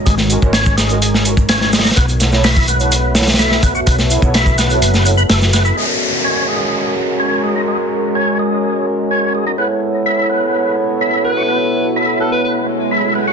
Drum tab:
HH |x---x---x---x-x-x---x---x---oooo|x-x-x---o---x-x-x---oooox---x---|x---x---x---x-x-x---x---x---x---|--------------------------------|
SH |x-x-x-x-x-x-x-x-x---x-x-x---x-x-|x-x-x-x-x-x-x-x-x---x-x-x---x-x-|x-x-x-x-x-x-x-x-x-x-x-x-x-x-x-x-|--------------------------------|
SD |--o-----o---o-----o-----o-o-oooo|----o-o-o-----------ooooo-o-----|--o-----o---o-----o-----o-o-o---|--------------------------------|
BD |o-----o---o-----------o---------|o---------o-----------------o---|o-----o---o---------------------|--------------------------------|

HH |--------------------------------|--------------------------------|--------------------------------|
SH |--------------------------------|--------------------------------|--------------------------------|
SD |--------------------------------|--------------------------------|--------------------------------|
BD |--------------------------------|--------------------------------|--------------------------------|